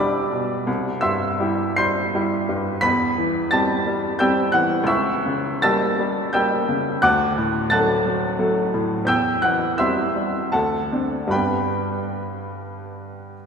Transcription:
Already playing: B1 B2 G3 D4 G4 D5 E5 F#5 B5 D6 E6 F#6
0.32 B2
0.67 C2
1.01 G2 E5 C6 E6
1.40 G3 E4 G4
1.76 G3 C6 G6 C7
2.15 G3 E4 G4
2.49 G2
2.81 E2 B5 B6
3.18 E3
3.51 G3 C4 G4 A5 A6
3.87 G3
4.19 G3 C4 G4 G5 E6 G6
4.52 E3 F#5 F#6
4.83 C#2 E6
4.88 E5 C#6
5.26 C#3
5.62 G3 A#3 G4 A5 E6 A6
5.99 G3
6.33 G3 A#3 G4 G5 E6 G6
6.69 C#3
7.02 D2 F#5 D6 F#6
7.38 A2
7.70 F#3 A3 A4 A5 F#6 A6
8.05 F#3
8.39 F#3 A3 A4
8.74 A2
9.05 E2 G5 E6 G6
9.42 E3 F#5 F#6
9.78 G3 C4 G4 E5 C6 E6
10.16 G3
10.52 D2 A4 F#5 A5
10.92 C4 D4
11.27 G2 G3 B3 D4 B5
11.32 B4 G5

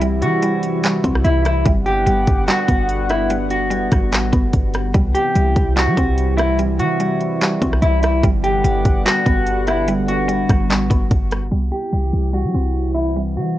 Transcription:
Already playing: C2 C3 E3 G3 C4 E4
0.01 G3, closed hi-hat
0.22 E3 F#4, closed hi-hat
0.42 G3, closed hi-hat
0.63 closed hi-hat
0.84 G3, clap, closed hi-hat
1.04 C2 C4, kick, closed hi-hat
1.15 cross-stick
1.25 C2 E4, closed hi-hat
1.45 E4, cross-stick, closed hi-hat
1.66 G1 D3 G3 B3 F#5, kick, closed hi-hat
1.86 G4, closed hi-hat
2.06 G1 G3, closed hi-hat
2.27 G1, kick, closed hi-hat
2.48 G3 F#4, clap, closed hi-hat
2.68 G1 B3, kick, closed hi-hat
2.89 closed hi-hat
3.10 E4, cross-stick, closed hi-hat
3.30 G3, closed hi-hat
3.51 F#4, closed hi-hat
3.70 G3, closed hi-hat
3.92 G1, kick, cross-stick, closed hi-hat
4.12 A1 G3, clap, closed hi-hat
4.33 G1 B3, kick, closed hi-hat
4.53 G1, kick, closed hi-hat
4.74 cross-stick, closed hi-hat
4.94 C2 C3 E3 G3 E4, kick, closed hi-hat
5.15 G4, closed hi-hat
5.35 C2 G3, closed hi-hat
5.56 C2, kick, closed hi-hat
5.76 G3 F#4, clap, closed hi-hat
5.87 G3
5.97 C2 C4, kick, closed hi-hat
6.18 closed hi-hat
6.37 E4, cross-stick, closed hi-hat
6.59 G3, closed hi-hat
6.79 E3 F#4, closed hi-hat
7.00 G3, closed hi-hat
7.21 closed hi-hat
7.41 G3, clap, closed hi-hat
7.62 C2 C4, kick, closed hi-hat
7.73 cross-stick
7.82 C2 E4, closed hi-hat
8.03 E4, cross-stick, closed hi-hat
8.23 G1 D3 G3 B3 F#5, kick, closed hi-hat
8.44 G4, closed hi-hat
8.64 G1 G3, closed hi-hat
8.85 G1, kick, closed hi-hat
9.05 G3 F#4, clap, closed hi-hat
9.26 G1 B3, kick, closed hi-hat
9.46 closed hi-hat
9.67 E4, cross-stick, closed hi-hat
9.88 G3, closed hi-hat
10.08 F#4, closed hi-hat
10.28 G3, closed hi-hat
10.49 G1, kick, cross-stick, closed hi-hat
10.70 A1 G3, clap, closed hi-hat
10.90 G1 B3, kick, closed hi-hat
11.11 G1, kick, closed hi-hat
11.31 cross-stick, closed hi-hat
11.52 C2 C3 E3 G3 E4
11.72 G4
11.93 C2 G3
12.13 C2
12.33 G3 F#4
12.44 G3
12.55 C2 C4
12.95 E4
13.16 G3
13.37 E3 F#4

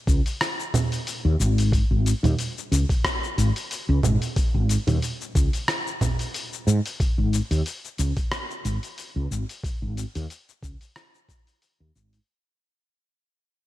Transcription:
0.07 C#2, kick, open hi-hat, shaker
0.26 open hi-hat, shaker
0.41 cross-stick, open hi-hat, shaker
0.60 shaker
0.74 open hi-hat, low conga, shaker
0.92 open hi-hat, shaker
1.07 open hi-hat, shaker
1.25 D#2
1.40 G#1, shaker
1.58 open hi-hat, shaker
1.72 kick, open hi-hat, shaker
1.91 G#1
2.06 open hi-hat, shaker
2.23 D#2, open hi-hat, low conga, shaker
2.39 open hi-hat, shaker
2.58 shaker
2.71 C#2, open hi-hat, shaker
2.89 kick, open hi-hat, shaker
3.04 kick, cross-stick, open hi-hat, shaker
3.24 shaker
3.38 G#1, open hi-hat, shaker
3.56 open hi-hat, shaker
3.71 open hi-hat, shaker
3.89 C#2
4.03 G#1, low conga, shaker
4.22 open hi-hat, shaker
4.36 kick, open hi-hat, shaker
4.54 G#1
4.69 open hi-hat, shaker
4.87 D#2, open hi-hat, low conga, shaker
5.02 open hi-hat, shaker
5.21 shaker
5.35 C#2, kick, open hi-hat, shaker
5.53 open hi-hat, shaker
5.68 cross-stick, open hi-hat, shaker
5.87 shaker
6.01 kick, open hi-hat, low conga, shaker
6.19 open hi-hat, shaker
6.34 open hi-hat, shaker
6.53 shaker
6.67 G#2, shaker
6.86 open hi-hat, shaker
7.00 kick, open hi-hat, shaker
7.18 G#1
7.33 open hi-hat, shaker
7.51 D#2, open hi-hat, shaker
7.66 open hi-hat, shaker
7.85 shaker
7.98 C#2, open hi-hat, shaker
8.17 kick, open hi-hat, shaker
8.32 cross-stick, open hi-hat, shaker
8.51 shaker
8.65 G#1, open hi-hat, shaker
8.83 open hi-hat, shaker
8.98 open hi-hat, shaker
9.16 C#2
9.31 G#1, shaker
9.49 open hi-hat, shaker
9.64 kick, open hi-hat, shaker
9.82 G#1
9.97 open hi-hat, shaker
10.15 D#2, open hi-hat, shaker
10.30 open hi-hat, shaker
10.49 shaker
10.63 C#2, kick, open hi-hat, shaker
10.81 open hi-hat, shaker
10.96 cross-stick, open hi-hat, shaker
11.15 shaker
11.29 kick, open hi-hat, shaker
11.47 open hi-hat, shaker
11.62 open hi-hat, shaker
11.80 D#2
11.95 G#1, shaker
12.13 open hi-hat, shaker

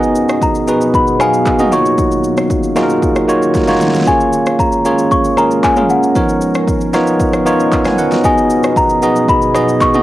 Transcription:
Already playing: B2 F#3 B3 D#4 F#4 G#4 D#5 G#5
0.03 shaker
0.15 shaker
0.29 cross-stick, shaker
0.42 A#5, kick, shaker
0.55 shaker
0.67 B3 D#4 F#4 G#4 B4, shaker
0.81 shaker
0.94 B5, kick, shaker
1.07 shaker
1.19 B3 D#4 F#4 G#4 F5 G#5, cross-stick, shaker
1.34 shaker
1.46 kick, clap, shaker
1.59 B3 D#4 F#4 G#4 D#5, mid tom, shaker
1.71 D#3 A#3 C#4 D#4 F4 F#4 C#5 F5 C#6, shaker
1.86 shaker
1.98 kick, shaker
2.12 shaker
2.24 shaker
2.37 cross-stick, shaker
2.50 kick, shaker
2.63 shaker
2.76 A#3 D#4 F4 F#4 G#4, cross-stick, snare, shaker
2.83 A#4
2.90 shaker
3.02 kick, shaker
3.16 cross-stick, shaker
3.28 A#3 D#4 F4 F#4 C#5, shaker
3.42 shaker
3.55 kick, snare, shaker
3.62 snare
3.68 A#3 D#4 F4 F#4 C#5, snare, shaker
3.75 snare
3.81 snare, shaker
3.88 snare
3.94 snare, shaker
4.01 snare
4.06 G#3 A#3 C#4 F4 G#4 A#4 C#5 G#5, kick, shaker
4.20 shaker
4.33 shaker
4.46 cross-stick, shaker
4.59 A#5, kick, shaker
4.72 shaker
4.85 A#3 C#4 F4 G#4 C#5, shaker
4.99 shaker
5.11 C#6, kick, shaker
5.25 shaker
5.37 A#3 C#4 F4 G#4 A#4 A#5, cross-stick, shaker
5.51 shaker
5.64 G#5, kick, clap, shaker
5.76 A#3 C#4 F4 G#4 A#4, mid tom, shaker
5.90 F#5, shaker
6.03 shaker
6.15 F3 B3 D#4 A#4 C#5, kick, shaker
6.29 shaker
6.41 shaker
6.55 cross-stick, shaker
6.68 kick, shaker
6.81 shaker
6.93 B3 D#4 F4 A#4 C#5, cross-stick, snare, shaker
7.07 shaker
7.20 kick, shaker
7.33 cross-stick, shaker
7.46 B3 D#4 F4 A#4 C#5, shaker
7.60 shaker
7.72 kick, clap, shaker
7.85 B4 G#5, cross-stick, snare, mid tom, shaker
7.98 A#4 F#5, shaker
8.12 F#4 D#5, snare, shaker
8.24 B2 F#3 B3 D#4 F#4 G#4 D#5 G#5, kick, shaker
8.38 shaker
8.50 shaker
8.64 cross-stick, shaker
8.76 A#5, kick, shaker
8.90 shaker
9.02 B3 D#4 F#4 G#4 D#5, shaker
9.16 shaker
9.29 B5, kick, shaker
9.42 shaker
9.54 B3 D#4 F#4 G#4 D#5, cross-stick, shaker
9.69 shaker
9.81 C#6, kick, clap, shaker
9.94 B3 D#4 F#4 G#4 D#5, mid tom, shaker

